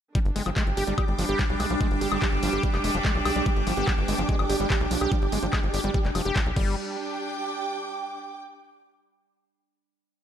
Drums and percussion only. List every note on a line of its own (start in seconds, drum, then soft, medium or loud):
0.15 kick loud
0.15 closed hi-hat medium
0.25 closed hi-hat soft
0.36 open hi-hat loud
0.46 closed hi-hat medium
0.46 high woodblock soft
0.56 kick loud
0.56 clap loud
0.56 closed hi-hat medium
0.67 closed hi-hat soft
0.77 open hi-hat loud
0.88 closed hi-hat medium
0.98 kick loud
0.98 closed hi-hat medium
0.98 high woodblock medium
1.08 closed hi-hat soft
1.19 open hi-hat loud
1.39 kick loud
1.39 clap loud
1.39 closed hi-hat medium
1.50 closed hi-hat soft
1.60 open hi-hat loud
1.60 high woodblock soft
1.70 closed hi-hat medium
1.81 kick loud
1.81 closed hi-hat medium
1.91 closed hi-hat soft
2.01 open hi-hat loud
2.12 high woodblock medium
2.22 kick loud
2.22 clap loud
2.22 closed hi-hat medium
2.32 closed hi-hat soft
2.43 open hi-hat loud
2.53 closed hi-hat medium
2.63 kick loud
2.63 closed hi-hat medium
2.74 clap soft
2.74 closed hi-hat soft
2.74 high woodblock soft
2.84 open hi-hat loud
2.94 closed hi-hat medium
3.05 kick loud
3.05 clap loud
3.05 closed hi-hat medium
3.15 closed hi-hat soft
3.25 open hi-hat loud
3.25 high woodblock medium
3.36 closed hi-hat medium
3.46 kick loud
3.46 closed hi-hat medium
3.56 closed hi-hat soft
3.67 open hi-hat loud
3.77 closed hi-hat medium
3.87 kick loud
3.87 clap loud
3.87 closed hi-hat soft
3.87 high woodblock soft
3.98 closed hi-hat soft
4.08 open hi-hat loud
4.19 closed hi-hat medium
4.29 kick loud
4.29 closed hi-hat medium
4.39 closed hi-hat soft
4.39 high woodblock medium
4.50 open hi-hat loud
4.60 closed hi-hat medium
4.70 kick loud
4.70 clap loud
4.70 closed hi-hat soft
4.81 closed hi-hat soft
4.91 open hi-hat loud
5.01 closed hi-hat medium
5.01 high woodblock soft
5.12 kick loud
5.12 closed hi-hat medium
5.22 closed hi-hat soft
5.32 open hi-hat loud
5.43 closed hi-hat medium
5.53 kick loud
5.53 clap loud
5.53 closed hi-hat medium
5.53 high woodblock medium
5.63 closed hi-hat soft
5.74 open hi-hat loud
5.84 closed hi-hat medium
5.94 kick loud
5.94 closed hi-hat soft
6.05 clap soft
6.05 closed hi-hat soft
6.15 open hi-hat loud
6.15 high woodblock soft
6.25 closed hi-hat medium
6.36 kick loud
6.36 clap loud
6.36 closed hi-hat soft
6.46 closed hi-hat soft
6.56 kick loud
6.56 crash medium